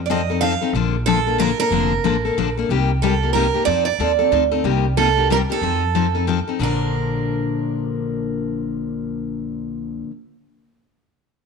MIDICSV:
0, 0, Header, 1, 4, 480
1, 0, Start_track
1, 0, Key_signature, -2, "major"
1, 0, Tempo, 325556
1, 1094, Time_signature, 3, 2, 24, 8
1, 16895, End_track
2, 0, Start_track
2, 0, Title_t, "Steel-string acoustic guitar"
2, 0, Program_c, 0, 25
2, 84, Note_on_c, 0, 74, 56
2, 151, Note_off_c, 0, 74, 0
2, 160, Note_on_c, 0, 75, 73
2, 596, Note_off_c, 0, 75, 0
2, 602, Note_on_c, 0, 77, 93
2, 1053, Note_off_c, 0, 77, 0
2, 1562, Note_on_c, 0, 69, 91
2, 2012, Note_off_c, 0, 69, 0
2, 2059, Note_on_c, 0, 70, 99
2, 2336, Note_off_c, 0, 70, 0
2, 2354, Note_on_c, 0, 70, 97
2, 3726, Note_off_c, 0, 70, 0
2, 4453, Note_on_c, 0, 69, 66
2, 4903, Note_off_c, 0, 69, 0
2, 4909, Note_on_c, 0, 70, 81
2, 5377, Note_off_c, 0, 70, 0
2, 5383, Note_on_c, 0, 74, 97
2, 5659, Note_off_c, 0, 74, 0
2, 5677, Note_on_c, 0, 74, 82
2, 6306, Note_off_c, 0, 74, 0
2, 7331, Note_on_c, 0, 69, 85
2, 7773, Note_off_c, 0, 69, 0
2, 7846, Note_on_c, 0, 70, 93
2, 7920, Note_off_c, 0, 70, 0
2, 8135, Note_on_c, 0, 69, 81
2, 9204, Note_off_c, 0, 69, 0
2, 9780, Note_on_c, 0, 70, 69
2, 14790, Note_off_c, 0, 70, 0
2, 16895, End_track
3, 0, Start_track
3, 0, Title_t, "Steel-string acoustic guitar"
3, 0, Program_c, 1, 25
3, 143, Note_on_c, 1, 53, 82
3, 148, Note_on_c, 1, 60, 82
3, 150, Note_on_c, 1, 63, 76
3, 159, Note_on_c, 1, 69, 88
3, 301, Note_off_c, 1, 53, 0
3, 303, Note_off_c, 1, 60, 0
3, 304, Note_off_c, 1, 63, 0
3, 309, Note_off_c, 1, 69, 0
3, 440, Note_on_c, 1, 69, 53
3, 454, Note_on_c, 1, 63, 47
3, 464, Note_on_c, 1, 60, 42
3, 608, Note_off_c, 1, 63, 0
3, 611, Note_off_c, 1, 69, 0
3, 612, Note_off_c, 1, 60, 0
3, 620, Note_on_c, 1, 53, 75
3, 625, Note_on_c, 1, 63, 75
3, 628, Note_on_c, 1, 69, 80
3, 629, Note_on_c, 1, 60, 82
3, 779, Note_off_c, 1, 53, 0
3, 781, Note_off_c, 1, 63, 0
3, 783, Note_off_c, 1, 60, 0
3, 783, Note_off_c, 1, 69, 0
3, 905, Note_on_c, 1, 69, 48
3, 920, Note_on_c, 1, 63, 49
3, 930, Note_on_c, 1, 60, 44
3, 1085, Note_off_c, 1, 69, 0
3, 1093, Note_off_c, 1, 63, 0
3, 1098, Note_off_c, 1, 60, 0
3, 1100, Note_on_c, 1, 50, 66
3, 1111, Note_on_c, 1, 58, 63
3, 1113, Note_on_c, 1, 62, 68
3, 1114, Note_on_c, 1, 53, 61
3, 1118, Note_on_c, 1, 69, 67
3, 1397, Note_off_c, 1, 50, 0
3, 1402, Note_off_c, 1, 58, 0
3, 1403, Note_off_c, 1, 62, 0
3, 1404, Note_off_c, 1, 53, 0
3, 1405, Note_off_c, 1, 69, 0
3, 1576, Note_on_c, 1, 50, 72
3, 1580, Note_on_c, 1, 53, 83
3, 1584, Note_on_c, 1, 58, 82
3, 1584, Note_on_c, 1, 62, 86
3, 1594, Note_on_c, 1, 69, 84
3, 1735, Note_off_c, 1, 50, 0
3, 1737, Note_off_c, 1, 53, 0
3, 1739, Note_off_c, 1, 58, 0
3, 1739, Note_off_c, 1, 62, 0
3, 1744, Note_off_c, 1, 69, 0
3, 1871, Note_on_c, 1, 69, 58
3, 1885, Note_on_c, 1, 62, 46
3, 1900, Note_on_c, 1, 58, 44
3, 2038, Note_off_c, 1, 62, 0
3, 2039, Note_off_c, 1, 58, 0
3, 2040, Note_on_c, 1, 50, 81
3, 2047, Note_off_c, 1, 69, 0
3, 2052, Note_on_c, 1, 53, 77
3, 2056, Note_on_c, 1, 58, 89
3, 2056, Note_on_c, 1, 62, 80
3, 2063, Note_on_c, 1, 69, 91
3, 2206, Note_off_c, 1, 50, 0
3, 2212, Note_off_c, 1, 53, 0
3, 2215, Note_off_c, 1, 58, 0
3, 2215, Note_off_c, 1, 62, 0
3, 2218, Note_off_c, 1, 69, 0
3, 2350, Note_on_c, 1, 69, 56
3, 2365, Note_on_c, 1, 62, 50
3, 2379, Note_on_c, 1, 58, 44
3, 2518, Note_off_c, 1, 58, 0
3, 2526, Note_off_c, 1, 69, 0
3, 2527, Note_off_c, 1, 62, 0
3, 2532, Note_on_c, 1, 53, 65
3, 2536, Note_on_c, 1, 50, 64
3, 2536, Note_on_c, 1, 58, 68
3, 2543, Note_on_c, 1, 69, 63
3, 2544, Note_on_c, 1, 62, 64
3, 2831, Note_off_c, 1, 53, 0
3, 2832, Note_off_c, 1, 50, 0
3, 2833, Note_off_c, 1, 58, 0
3, 2836, Note_off_c, 1, 69, 0
3, 2837, Note_off_c, 1, 62, 0
3, 3009, Note_on_c, 1, 50, 85
3, 3013, Note_on_c, 1, 53, 82
3, 3023, Note_on_c, 1, 58, 87
3, 3023, Note_on_c, 1, 62, 87
3, 3024, Note_on_c, 1, 69, 91
3, 3170, Note_off_c, 1, 50, 0
3, 3172, Note_off_c, 1, 53, 0
3, 3177, Note_off_c, 1, 58, 0
3, 3177, Note_off_c, 1, 62, 0
3, 3177, Note_off_c, 1, 69, 0
3, 3315, Note_on_c, 1, 69, 55
3, 3322, Note_on_c, 1, 62, 48
3, 3343, Note_on_c, 1, 58, 44
3, 3487, Note_off_c, 1, 69, 0
3, 3490, Note_off_c, 1, 58, 0
3, 3490, Note_off_c, 1, 62, 0
3, 3505, Note_on_c, 1, 53, 73
3, 3508, Note_on_c, 1, 50, 73
3, 3508, Note_on_c, 1, 58, 77
3, 3517, Note_on_c, 1, 62, 83
3, 3517, Note_on_c, 1, 69, 75
3, 3657, Note_off_c, 1, 53, 0
3, 3659, Note_off_c, 1, 50, 0
3, 3659, Note_off_c, 1, 58, 0
3, 3663, Note_off_c, 1, 62, 0
3, 3663, Note_off_c, 1, 69, 0
3, 3796, Note_on_c, 1, 69, 46
3, 3812, Note_on_c, 1, 62, 46
3, 3817, Note_on_c, 1, 58, 43
3, 3967, Note_off_c, 1, 69, 0
3, 3972, Note_off_c, 1, 58, 0
3, 3975, Note_off_c, 1, 62, 0
3, 3984, Note_on_c, 1, 48, 58
3, 3990, Note_on_c, 1, 58, 61
3, 3991, Note_on_c, 1, 63, 66
3, 3992, Note_on_c, 1, 55, 59
3, 3994, Note_on_c, 1, 67, 64
3, 4275, Note_off_c, 1, 48, 0
3, 4278, Note_off_c, 1, 58, 0
3, 4278, Note_off_c, 1, 63, 0
3, 4279, Note_off_c, 1, 55, 0
3, 4280, Note_off_c, 1, 67, 0
3, 4464, Note_on_c, 1, 48, 72
3, 4467, Note_on_c, 1, 55, 84
3, 4471, Note_on_c, 1, 58, 84
3, 4477, Note_on_c, 1, 63, 77
3, 4479, Note_on_c, 1, 67, 86
3, 4616, Note_off_c, 1, 48, 0
3, 4617, Note_off_c, 1, 55, 0
3, 4619, Note_off_c, 1, 58, 0
3, 4622, Note_off_c, 1, 63, 0
3, 4623, Note_off_c, 1, 67, 0
3, 4756, Note_on_c, 1, 67, 47
3, 4770, Note_on_c, 1, 63, 41
3, 4780, Note_on_c, 1, 58, 40
3, 4923, Note_off_c, 1, 63, 0
3, 4925, Note_off_c, 1, 58, 0
3, 4926, Note_off_c, 1, 67, 0
3, 4929, Note_on_c, 1, 48, 74
3, 4940, Note_on_c, 1, 55, 74
3, 4941, Note_on_c, 1, 63, 86
3, 4943, Note_on_c, 1, 58, 78
3, 4944, Note_on_c, 1, 67, 81
3, 5088, Note_off_c, 1, 48, 0
3, 5093, Note_off_c, 1, 55, 0
3, 5094, Note_off_c, 1, 63, 0
3, 5095, Note_off_c, 1, 58, 0
3, 5095, Note_off_c, 1, 67, 0
3, 5222, Note_on_c, 1, 67, 48
3, 5237, Note_on_c, 1, 63, 46
3, 5250, Note_on_c, 1, 58, 42
3, 5392, Note_off_c, 1, 63, 0
3, 5399, Note_off_c, 1, 67, 0
3, 5403, Note_off_c, 1, 58, 0
3, 5405, Note_on_c, 1, 53, 56
3, 5409, Note_on_c, 1, 60, 57
3, 5410, Note_on_c, 1, 63, 71
3, 5421, Note_on_c, 1, 69, 67
3, 5704, Note_off_c, 1, 53, 0
3, 5706, Note_off_c, 1, 60, 0
3, 5707, Note_off_c, 1, 63, 0
3, 5712, Note_off_c, 1, 69, 0
3, 5892, Note_on_c, 1, 53, 82
3, 5896, Note_on_c, 1, 60, 73
3, 5899, Note_on_c, 1, 63, 76
3, 5905, Note_on_c, 1, 69, 91
3, 6049, Note_off_c, 1, 53, 0
3, 6051, Note_off_c, 1, 60, 0
3, 6052, Note_off_c, 1, 63, 0
3, 6055, Note_off_c, 1, 69, 0
3, 6172, Note_on_c, 1, 69, 52
3, 6190, Note_on_c, 1, 63, 49
3, 6206, Note_on_c, 1, 60, 39
3, 6352, Note_off_c, 1, 60, 0
3, 6353, Note_off_c, 1, 69, 0
3, 6357, Note_off_c, 1, 63, 0
3, 6365, Note_on_c, 1, 53, 70
3, 6369, Note_on_c, 1, 60, 77
3, 6375, Note_on_c, 1, 63, 79
3, 6380, Note_on_c, 1, 69, 85
3, 6525, Note_off_c, 1, 53, 0
3, 6527, Note_off_c, 1, 60, 0
3, 6530, Note_off_c, 1, 63, 0
3, 6532, Note_off_c, 1, 69, 0
3, 6657, Note_on_c, 1, 69, 56
3, 6661, Note_on_c, 1, 63, 45
3, 6676, Note_on_c, 1, 60, 41
3, 6835, Note_off_c, 1, 69, 0
3, 6838, Note_off_c, 1, 63, 0
3, 6841, Note_on_c, 1, 48, 65
3, 6845, Note_off_c, 1, 60, 0
3, 6852, Note_on_c, 1, 55, 59
3, 6852, Note_on_c, 1, 63, 64
3, 6854, Note_on_c, 1, 58, 68
3, 6857, Note_on_c, 1, 67, 69
3, 7142, Note_off_c, 1, 48, 0
3, 7147, Note_off_c, 1, 55, 0
3, 7148, Note_off_c, 1, 58, 0
3, 7148, Note_off_c, 1, 63, 0
3, 7150, Note_off_c, 1, 67, 0
3, 7329, Note_on_c, 1, 48, 80
3, 7333, Note_on_c, 1, 55, 79
3, 7337, Note_on_c, 1, 63, 89
3, 7338, Note_on_c, 1, 58, 88
3, 7345, Note_on_c, 1, 67, 79
3, 7487, Note_off_c, 1, 48, 0
3, 7489, Note_off_c, 1, 55, 0
3, 7491, Note_off_c, 1, 58, 0
3, 7491, Note_off_c, 1, 63, 0
3, 7495, Note_off_c, 1, 67, 0
3, 7623, Note_on_c, 1, 67, 51
3, 7637, Note_on_c, 1, 63, 45
3, 7653, Note_on_c, 1, 58, 45
3, 7799, Note_off_c, 1, 67, 0
3, 7805, Note_off_c, 1, 63, 0
3, 7809, Note_off_c, 1, 58, 0
3, 7817, Note_on_c, 1, 48, 69
3, 7819, Note_on_c, 1, 55, 81
3, 7827, Note_on_c, 1, 58, 78
3, 7829, Note_on_c, 1, 63, 74
3, 7837, Note_on_c, 1, 67, 81
3, 7971, Note_off_c, 1, 48, 0
3, 7972, Note_off_c, 1, 55, 0
3, 7976, Note_off_c, 1, 58, 0
3, 7977, Note_off_c, 1, 63, 0
3, 7981, Note_off_c, 1, 67, 0
3, 8106, Note_on_c, 1, 67, 46
3, 8117, Note_on_c, 1, 63, 47
3, 8133, Note_on_c, 1, 58, 39
3, 8280, Note_off_c, 1, 67, 0
3, 8285, Note_off_c, 1, 63, 0
3, 8290, Note_on_c, 1, 53, 57
3, 8292, Note_off_c, 1, 58, 0
3, 8297, Note_on_c, 1, 60, 60
3, 8305, Note_on_c, 1, 63, 67
3, 8305, Note_on_c, 1, 69, 60
3, 8587, Note_off_c, 1, 53, 0
3, 8590, Note_off_c, 1, 60, 0
3, 8594, Note_off_c, 1, 63, 0
3, 8594, Note_off_c, 1, 69, 0
3, 8770, Note_on_c, 1, 53, 81
3, 8774, Note_on_c, 1, 60, 73
3, 8786, Note_on_c, 1, 69, 77
3, 8788, Note_on_c, 1, 63, 76
3, 8927, Note_off_c, 1, 53, 0
3, 8930, Note_off_c, 1, 60, 0
3, 8935, Note_off_c, 1, 69, 0
3, 8937, Note_off_c, 1, 63, 0
3, 9063, Note_on_c, 1, 69, 46
3, 9075, Note_on_c, 1, 63, 40
3, 9088, Note_on_c, 1, 60, 39
3, 9231, Note_off_c, 1, 60, 0
3, 9239, Note_off_c, 1, 69, 0
3, 9241, Note_off_c, 1, 63, 0
3, 9248, Note_on_c, 1, 60, 75
3, 9252, Note_on_c, 1, 53, 72
3, 9259, Note_on_c, 1, 63, 73
3, 9270, Note_on_c, 1, 69, 76
3, 9407, Note_off_c, 1, 60, 0
3, 9409, Note_off_c, 1, 53, 0
3, 9412, Note_off_c, 1, 63, 0
3, 9418, Note_off_c, 1, 69, 0
3, 9546, Note_on_c, 1, 69, 46
3, 9562, Note_on_c, 1, 63, 41
3, 9565, Note_on_c, 1, 60, 39
3, 9721, Note_off_c, 1, 69, 0
3, 9722, Note_on_c, 1, 46, 65
3, 9729, Note_off_c, 1, 63, 0
3, 9731, Note_off_c, 1, 60, 0
3, 9734, Note_on_c, 1, 50, 70
3, 9740, Note_on_c, 1, 53, 72
3, 9751, Note_on_c, 1, 58, 73
3, 9755, Note_on_c, 1, 62, 80
3, 14883, Note_off_c, 1, 46, 0
3, 14894, Note_off_c, 1, 50, 0
3, 14900, Note_off_c, 1, 53, 0
3, 14911, Note_off_c, 1, 58, 0
3, 14915, Note_off_c, 1, 62, 0
3, 16895, End_track
4, 0, Start_track
4, 0, Title_t, "Upright bass"
4, 0, Program_c, 2, 32
4, 0, Note_on_c, 2, 41, 87
4, 796, Note_off_c, 2, 41, 0
4, 1076, Note_on_c, 2, 34, 84
4, 2232, Note_off_c, 2, 34, 0
4, 2517, Note_on_c, 2, 29, 81
4, 2905, Note_off_c, 2, 29, 0
4, 3007, Note_on_c, 2, 33, 75
4, 3414, Note_off_c, 2, 33, 0
4, 3495, Note_on_c, 2, 34, 70
4, 3899, Note_off_c, 2, 34, 0
4, 3967, Note_on_c, 2, 36, 84
4, 5117, Note_off_c, 2, 36, 0
4, 5403, Note_on_c, 2, 41, 85
4, 5787, Note_off_c, 2, 41, 0
4, 5876, Note_on_c, 2, 39, 76
4, 6287, Note_off_c, 2, 39, 0
4, 6357, Note_on_c, 2, 38, 75
4, 6767, Note_off_c, 2, 38, 0
4, 6840, Note_on_c, 2, 36, 88
4, 7993, Note_off_c, 2, 36, 0
4, 8279, Note_on_c, 2, 41, 82
4, 9433, Note_off_c, 2, 41, 0
4, 9715, Note_on_c, 2, 34, 80
4, 14758, Note_off_c, 2, 34, 0
4, 16895, End_track
0, 0, End_of_file